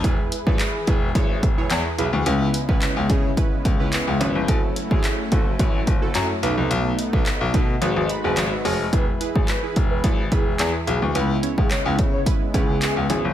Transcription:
<<
  \new Staff \with { instrumentName = "Analog synth lead" } { \time 4/4 \key e \major \tempo 4 = 108 r1 | r1 | r1 | r1 |
b'16 r8 gis'16 b'16 r8 b'16 r8 gis'8 gis'16 r16 gis'16 r16 | b'16 r8 gis'16 cis''16 r8 cis''16 r8 gis'8 gis'16 r16 gis'16 r16 | }
  \new Staff \with { instrumentName = "Synth keys" } { \time 4/4 \key e \major << { r1 | r1 | r1 | r2 r8 b''8 gis''16 e''16 dis''8 |
r1 | r1 | } \\ { <e' gis' b'>8 r16 <e' gis' b'>8 r16 <e' gis' b'>16 r16 <e' gis' cis''>8 r16 <e' gis' cis''>8 r16 <e' gis' b'>16 r16 | <cis' e' b'>8 r16 <cis' e' b'>8 r16 <cis' e' gis'>16 r16 <cis' e' b'>8 r16 <cis' e' b'>8 r16 <cis' e' b'>16 r16 | <e' fis' a'>8 r16 <e' fis' gis'>8 r16 <e' fis' a'>16 r16 <e' fis' b'>8 r16 <e' fis' a'>8 r16 <dis' a' b'>8~ | <dis' a' b'>8 r16 <dis' a' b'>8 r16 <dis' a' b'>16 r16 <fis' gis' b'>8 r16 <fis' gis' b'>8 r16 <fis' gis' cis''>16 r16 |
<e' gis' b'>16 r16 <e' gis' b'>8 r16 <e' gis' b'>8 r16 <e' gis' b'>16 r16 <e' gis' b'>8. r16 <e' gis' b'>16 r16 | <cis' e' b'>16 r16 <cis' e' cis''>8 r16 <cis' e' b'>8 r16 <cis' e' b'>16 r16 <cis' e' b'>8. r16 <cis' e' b'>16 r16 | } >> }
  \new Staff \with { instrumentName = "Analog synth pad" } { \time 4/4 \key e \major <e e' gis' b'>1 | <cis gis b>1 | <fis a cis'>2.~ <fis a cis'>8 <a b dis'>8~ | <a b dis'>2 <gis fis' b'>2 |
<e e' gis' b'>1 | <cis gis b>1 | }
  \new Staff \with { instrumentName = "Grand piano" } { \clef bass \time 4/4 \key e \major e,,16 r8 gis,,16 r8 e,,8 gis,,8 r8 e,16 r16 b,,16 d,16 | cis,8 r16 cis,16 r16 cis,16 cis8 r8 cis,8 r16 cis,16 gis,,16 g,,16 | fis,,16 r8 a,,16 r8 fis,,8 a,,8 fis,,8 fis,16 r16 b,,16 bis,,16 | b,,8 r16 b,,16 r16 b,,16 r8 gis,,16 gis,,16 r16 fis,,16 gis,,16 r16 eis,,8 |
e,,16 r8 gis,,16 r8 e,,8 gis,,8 r8 e,16 r16 b,,16 d,16 | cis,8 r16 cis,16 r16 cis,16 cis8 r8 cis,8 r16 cis,16 gis,,16 g,,16 | }
  \new DrumStaff \with { instrumentName = "Drums" } \drummode { \time 4/4 <hh bd>8 hh16 bd16 <hc hh>8 <hh bd>8 <hh bd>8 <hh bd>8 <hc hh>8 hh8 | hh8 hh16 bd16 <hc hh>8 <hh bd>8 <hh bd>8 <hh bd>8 <hc hh>8 hh8 | <hh bd>8 hh16 bd16 <hc hh>8 <hh bd>8 <hh bd>8 <hh bd>8 <hc hh>8 hh8 | hh8 hh16 bd16 <hc hh>8 <hh bd>8 hh8 hh8 <hc hh>8 hho8 |
<hh bd>8 hh16 bd16 <hc hh>8 <hh bd>8 <hh bd>8 <hh bd>8 <hc hh>8 hh8 | hh8 hh16 bd16 <hc hh>8 <hh bd>8 <hh bd>8 <hh bd>8 <hc hh>8 hh8 | }
>>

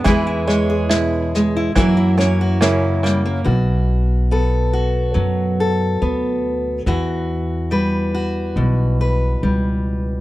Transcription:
<<
  \new Staff \with { instrumentName = "Steel-string acoustic guitar" } { \time 4/4 \key fis \minor \tempo 4 = 70 << { <gis e' gis' b'>16 e'16 cis''16 gis'4 e'16 <ais e' fis' ais'>16 e'16 cis''16 fis'4~ fis'16 | \key b \minor fis'4 a'8 fis'4 a'4. | fis'4 b'8 fis'4 b'4. | } \\ { e8 gis8 b,8 gis8 fis8 ais8 cis8 g16 ais16 | b,4 b4 fis4 b4 | e4 g4 b,4 g4 | } >> }
  \new Staff \with { instrumentName = "Five-string banjo" } { \time 4/4 \key fis \minor <e e'>8 gis8 e'4 e8 cis'8 <ais cis' e'>8 ais8 | \key b \minor r1 | r1 | }
  \new Staff \with { instrumentName = "Upright bass" } { \clef bass \time 4/4 \key fis \minor e,2 fis,2 | \key b \minor b,,2 fis,4 d,4 | e,2 b,,4 cis,4 | }
  \new DrumStaff \with { instrumentName = "Drums" } \drummode { \time 4/4 <bd sn>8 sn8 sn8 sn8 <bd sn>8 sn8 sn8 sn8 | r4 r4 r4 r4 | r4 r4 r4 r4 | }
>>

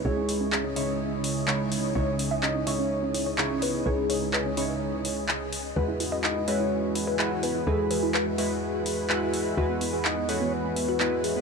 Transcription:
<<
  \new Staff \with { instrumentName = "Soft synth lead" } { \time 4/4 \key cis \minor \tempo 4 = 126 gis'2 r2 | r4 dis''8 cis''4. r8 b'8 | gis'2 r2 | r4 dis''8 cis''4. r8 b'8 |
gis'2 r2 | r4 dis''8 cis''8 b'4. gis'8 | }
  \new Staff \with { instrumentName = "Ambient pad" } { \time 4/4 \key cis \minor << { <cis' gis'>1~ | <cis' gis'>1~ | <cis' gis'>1 | b'1~ |
b'1 | cis''1 | } \\ { <cis dis''>1~ | <cis dis''>1~ | <cis dis''>1 | <e fis'>1~ |
<e fis'>1~ | <e fis'>1 | } >> }
  \new Staff \with { instrumentName = "Analog polysynth" } { \time 4/4 \key cis \minor <cis gis dis' e' cis''>4. <cis gis dis' e' cis''>4. <cis gis dis' e' cis''>4 | <cis gis dis' e' cis''>4. <cis gis dis' e' cis''>4. <cis gis dis' e' cis''>4 | <cis gis dis' e' cis''>4. <cis gis dis' e' cis''>4. r4 | <gis e' fis' b'>4. <gis e' fis' b'>4. <gis e' fis' b'>4 |
<gis e' fis' b'>4. <gis e' fis' b'>4. <gis e' fis' b'>4 | <gis e' fis' b'>4. <gis e' fis' b'>4. <gis e' fis' b'>4 | }
  \new Staff \with { instrumentName = "Synth arpeggio sound" } { \time 4/4 \key cis \minor fis'16 cis'16 gis'16 cis'16 gis'16 cis'16 cis'16 r2 r16 | cis''16 cis'16 cis'16 e''16 cis'16 cis'16 e''16 cis'16 r16 cis'16 cis'16 cis''16 cis'16 cis'16 cis''16 cis'16 | b'16 cis'16 cis''16 cis'16 b'16 cis'16 cis'16 r2 r16 | b'16 e'16 e'16 dis''16 e'16 e'16 dis''16 e'16 r16 e'16 e'16 b'16 e'16 e'16 b'16 e'16 |
a'16 e'16 b'16 e'16 b'16 e'16 e'16 r2 r16 | fis'16 b16 b16 gis'16 b16 b16 a'16 b16 r16 b16 b16 fis'16 b16 b16 fis'16 b16 | }
  \new Staff \with { instrumentName = "Analog synth bass" } { \clef bass \time 4/4 \key cis \minor cis,1 | cis,1 | cis,1 | e,1 |
e,1 | e,1 | }
  \new DrumStaff \with { instrumentName = "Drums" } \drummode { \time 4/4 r8 hho8 hc8 hho8 r8 hho8 hc8 hho8 | r8 hho8 hc8 hho8 r8 hho8 hc8 hho8 | r8 hho8 hc8 hho8 r8 hho8 hc8 hho8 | r8 hho8 hc8 hho8 r8 hho8 hc8 hho8 |
r8 hho8 hc8 hho8 r8 hho8 hc8 hho8 | r8 hho8 hc8 hho8 r8 hho8 hc8 hho8 | }
>>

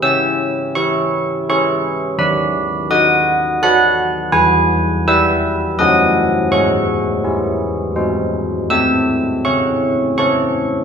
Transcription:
\new Staff \with { instrumentName = "Church bells" } { \time 3/4 \key cis \minor \tempo 4 = 83 << { <e'' e'''>4 <cis'' cis'''>4 <cis'' cis'''>4 | <b' b''>4 <dis'' dis'''>4 <fis'' fis'''>4 | gis''4 <e'' e'''>4 <dis'' dis'''>4 | <cis'' cis'''>2 r4 |
<e'' e'''>4 <cis'' cis'''>4 <cis'' cis'''>4 | } \\ { cis'4 e'4 <e' gis'>4 | dis4 fis'4 <fis' b'>4 | e4 <e' b'>4 <fis cis' a'>4 | gis4 <e' gis'>4 <gis dis' bis'>4 |
a4 cis'4 <cis' a'>4 | } >> }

